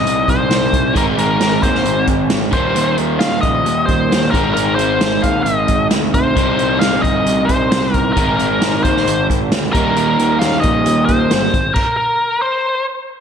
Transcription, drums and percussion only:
0.07 closed hi-hat
0.28 kick, closed hi-hat
0.51 snare, closed hi-hat
0.73 kick, closed hi-hat
0.96 kick, closed hi-hat
1.18 closed hi-hat
1.41 snare, closed hi-hat
1.63 kick, closed hi-hat
1.74 snare
1.85 closed hi-hat
2.07 kick, closed hi-hat
2.30 snare, closed hi-hat
2.52 kick, closed hi-hat
2.76 closed hi-hat
2.98 closed hi-hat
3.20 snare, closed hi-hat
3.43 kick, closed hi-hat
3.66 closed hi-hat
3.88 kick, closed hi-hat
4.12 snare, closed hi-hat
4.34 kick, closed hi-hat
4.56 closed hi-hat
4.79 closed hi-hat
5.01 snare, closed hi-hat
5.23 kick, closed hi-hat
5.46 closed hi-hat
5.68 kick, closed hi-hat
5.91 snare, closed hi-hat
6.14 kick, closed hi-hat
6.36 kick, closed hi-hat
6.59 closed hi-hat
6.81 snare, closed hi-hat
7.04 kick, closed hi-hat
7.26 closed hi-hat
7.49 kick, closed hi-hat
7.72 snare, closed hi-hat
7.94 kick, closed hi-hat
8.17 kick, closed hi-hat
8.39 closed hi-hat
8.62 snare, closed hi-hat
8.85 kick, closed hi-hat
8.96 snare
9.07 closed hi-hat
9.30 kick, closed hi-hat
9.52 snare, closed hi-hat
9.75 kick, closed hi-hat
9.96 closed hi-hat
10.19 closed hi-hat
10.41 snare, closed hi-hat
10.63 kick, closed hi-hat
10.86 closed hi-hat
11.08 kick, closed hi-hat
11.31 snare, closed hi-hat
11.54 kick, closed hi-hat
11.76 kick, crash

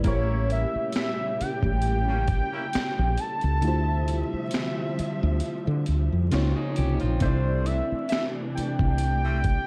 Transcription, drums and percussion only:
0.04 kick, closed hi-hat
0.50 closed hi-hat
0.92 snare, closed hi-hat
0.96 finger snap
1.41 closed hi-hat
1.63 kick
1.82 closed hi-hat
2.28 kick, closed hi-hat
2.73 finger snap, snare, closed hi-hat
3.17 closed hi-hat
3.41 closed hi-hat
3.62 closed hi-hat
4.08 closed hi-hat
4.51 snare, closed hi-hat
4.55 finger snap
4.99 closed hi-hat
5.40 closed hi-hat
5.86 closed hi-hat
6.32 finger snap, snare, closed hi-hat
6.76 closed hi-hat
7.00 closed hi-hat
7.20 kick, closed hi-hat
7.66 closed hi-hat
8.09 snare, closed hi-hat
8.13 finger snap
8.58 closed hi-hat
8.79 kick
8.98 closed hi-hat
9.44 kick, closed hi-hat

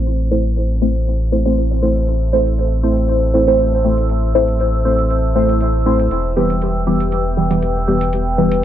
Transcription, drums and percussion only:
0.06 closed hi-hat
0.45 closed hi-hat
0.56 closed hi-hat
0.95 closed hi-hat
1.07 closed hi-hat
1.46 closed hi-hat
1.57 closed hi-hat
1.96 closed hi-hat
2.08 closed hi-hat
2.46 closed hi-hat
2.58 closed hi-hat
2.97 closed hi-hat
3.09 closed hi-hat
3.47 closed hi-hat
3.59 closed hi-hat
3.98 closed hi-hat
4.09 closed hi-hat
4.48 closed hi-hat
4.60 closed hi-hat
4.99 closed hi-hat
5.10 closed hi-hat
5.49 closed hi-hat
5.61 closed hi-hat
6.00 closed hi-hat
6.11 closed hi-hat
6.50 closed hi-hat
6.62 closed hi-hat
7.00 closed hi-hat
7.12 closed hi-hat
7.51 closed hi-hat
7.62 closed hi-hat
8.01 closed hi-hat
8.13 closed hi-hat
8.52 closed hi-hat

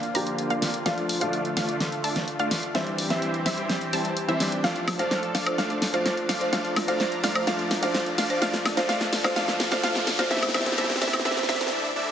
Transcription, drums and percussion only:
0.03 closed hi-hat
0.15 open hi-hat
0.27 closed hi-hat
0.38 closed hi-hat
0.50 closed hi-hat
0.62 snare, open hi-hat
0.74 closed hi-hat
0.86 snare, closed hi-hat
0.98 closed hi-hat
1.09 open hi-hat
1.21 closed hi-hat
1.33 closed hi-hat
1.45 closed hi-hat
1.57 snare, open hi-hat
1.69 closed hi-hat
1.80 snare, closed hi-hat
1.92 closed hi-hat
2.04 open hi-hat
2.16 snare, closed hi-hat
2.28 closed hi-hat
2.39 closed hi-hat
2.51 snare, open hi-hat
2.63 closed hi-hat
2.75 snare, closed hi-hat
2.87 closed hi-hat
2.98 open hi-hat
3.10 snare, closed hi-hat
3.22 closed hi-hat
3.34 closed hi-hat
3.46 snare, open hi-hat
3.58 closed hi-hat
3.69 snare, closed hi-hat
3.81 closed hi-hat
3.93 open hi-hat
4.05 closed hi-hat
4.17 closed hi-hat
4.29 closed hi-hat
4.40 snare, open hi-hat
4.52 closed hi-hat
4.64 snare, closed hi-hat
4.76 closed hi-hat
4.88 snare, open hi-hat, high woodblock
4.99 closed hi-hat
5.11 snare, closed hi-hat
5.23 closed hi-hat
5.35 snare, open hi-hat
5.46 closed hi-hat, high woodblock
5.58 snare, closed hi-hat
5.70 closed hi-hat
5.82 snare, open hi-hat
5.94 closed hi-hat
6.06 snare, closed hi-hat
6.17 closed hi-hat
6.29 snare, open hi-hat
6.41 closed hi-hat
6.53 snare, closed hi-hat
6.65 closed hi-hat
6.76 snare, open hi-hat, high woodblock
6.88 closed hi-hat
7.00 snare, closed hi-hat
7.12 closed hi-hat
7.24 snare, open hi-hat
7.35 closed hi-hat, high woodblock
7.47 snare, closed hi-hat
7.59 closed hi-hat
7.71 snare, open hi-hat
7.83 closed hi-hat
7.94 snare, closed hi-hat
8.06 closed hi-hat
8.18 snare, open hi-hat
8.30 closed hi-hat
8.42 snare, closed hi-hat
8.54 snare, closed hi-hat
8.66 snare, open hi-hat, high woodblock
8.77 snare, closed hi-hat
8.89 snare, closed hi-hat
9.01 snare, closed hi-hat
9.13 snare, open hi-hat
9.24 snare, closed hi-hat, high woodblock
9.36 snare, closed hi-hat
9.48 snare, closed hi-hat
9.60 snare, open hi-hat
9.72 snare, closed hi-hat
9.84 snare, closed hi-hat
9.95 snare, closed hi-hat
10.07 snare, open hi-hat
10.19 snare, closed hi-hat
10.31 snare, closed hi-hat
10.37 snare
10.43 snare, closed hi-hat, high woodblock
10.48 snare
10.54 snare, open hi-hat, high woodblock
10.60 snare
10.66 snare, closed hi-hat
10.72 snare
10.78 snare, closed hi-hat
10.84 snare
10.90 snare, closed hi-hat
10.96 snare
11.02 snare, open hi-hat
11.07 snare
11.13 snare, closed hi-hat, high woodblock
11.19 snare
11.25 snare, closed hi-hat
11.31 snare
11.37 snare, closed hi-hat
11.43 snare
11.49 snare, open hi-hat
11.55 snare
11.61 snare, closed hi-hat
11.67 snare

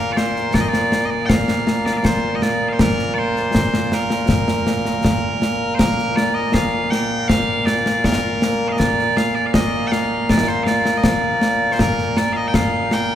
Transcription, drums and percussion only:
0.17 snare
0.36 snare
0.54 concert bass drum, snare
0.73 snare
0.92 snare
1.30 concert bass drum, snare
1.48 snare
1.67 snare
1.86 snare
2.05 concert bass drum, snare
2.42 snare
2.79 concert bass drum, snare
2.99 snare
3.36 snare
3.55 concert bass drum, snare
3.74 snare
3.92 snare
4.10 snare
4.29 concert bass drum, snare
4.48 snare
4.67 snare
4.85 snare
5.05 concert bass drum, snare
5.42 snare
5.79 concert bass drum, snare
5.98 snare
6.17 snare
6.54 concert bass drum, snare
6.92 snare
7.29 concert bass drum, snare
7.67 snare
7.86 snare
8.04 concert bass drum, snare
8.42 snare
8.80 concert bass drum, snare
8.99 snare
9.17 snare
9.54 concert bass drum, snare
9.92 snare
10.29 concert bass drum, snare
10.67 snare
10.85 snare
11.04 concert bass drum, snare
11.42 snare
11.79 concert bass drum, snare
11.98 snare
12.17 snare
12.54 concert bass drum, snare
12.91 snare

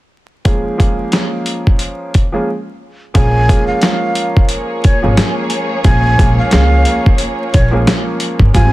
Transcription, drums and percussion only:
0.45 kick, closed hi-hat
0.80 kick, closed hi-hat
1.12 snare, closed hi-hat
1.46 closed hi-hat
1.67 kick
1.79 closed hi-hat
2.14 kick, closed hi-hat
3.15 kick, closed hi-hat
3.49 kick, closed hi-hat
3.82 snare, closed hi-hat
4.15 closed hi-hat
4.37 kick
4.49 closed hi-hat
4.84 kick, closed hi-hat
5.17 snare, closed hi-hat
5.50 closed hi-hat
5.84 kick, closed hi-hat
6.19 kick, closed hi-hat
6.51 snare, closed hi-hat
6.85 closed hi-hat
7.06 kick
7.18 closed hi-hat
7.54 kick, closed hi-hat
7.87 snare, closed hi-hat
8.20 closed hi-hat
8.39 kick
8.54 kick, closed hi-hat

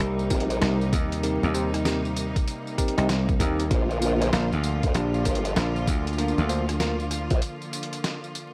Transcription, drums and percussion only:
0.19 tambourine
0.30 kick, cross-stick, closed hi-hat, tambourine
0.40 closed hi-hat
0.50 closed hi-hat, tambourine
0.62 snare, closed hi-hat, tambourine
0.81 tambourine
0.93 kick, closed hi-hat, tambourine
1.12 closed hi-hat, tambourine
1.23 closed hi-hat, tambourine
1.43 tambourine
1.55 tambourine
1.74 cross-stick, closed hi-hat, tambourine
1.85 snare, closed hi-hat, tambourine
2.05 tambourine
2.16 closed hi-hat, tambourine
2.36 kick, closed hi-hat, tambourine
2.48 closed hi-hat, tambourine
2.67 tambourine
2.78 kick, closed hi-hat, tambourine
2.88 closed hi-hat
2.98 closed hi-hat, tambourine
3.09 snare, closed hi-hat, tambourine
3.29 kick, tambourine
3.40 kick, closed hi-hat, tambourine
3.60 closed hi-hat, tambourine
3.71 kick, closed hi-hat, tambourine
3.91 tambourine
4.02 tambourine
4.22 cross-stick, closed hi-hat, tambourine
4.27 cross-stick
4.33 cross-stick, snare, closed hi-hat, tambourine
4.42 cross-stick
4.52 tambourine
4.64 closed hi-hat, tambourine
4.83 kick, closed hi-hat, tambourine
4.94 closed hi-hat, tambourine
5.14 tambourine
5.25 kick, cross-stick, closed hi-hat, tambourine
5.35 closed hi-hat
5.45 closed hi-hat, tambourine
5.56 snare, closed hi-hat, tambourine
5.76 tambourine
5.87 kick, closed hi-hat, tambourine
6.07 closed hi-hat, tambourine
6.13 tambourine
6.18 closed hi-hat, tambourine
6.28 tambourine
6.38 tambourine
6.49 closed hi-hat, tambourine
6.69 cross-stick, closed hi-hat, tambourine
6.80 snare, closed hi-hat, tambourine
7.00 tambourine
7.11 cross-stick, closed hi-hat, tambourine
7.31 kick, closed hi-hat, tambourine
7.42 closed hi-hat, tambourine
7.62 tambourine
7.73 closed hi-hat, tambourine
7.83 closed hi-hat
7.93 closed hi-hat, tambourine
8.04 snare, closed hi-hat, tambourine
8.24 tambourine
8.35 closed hi-hat, tambourine

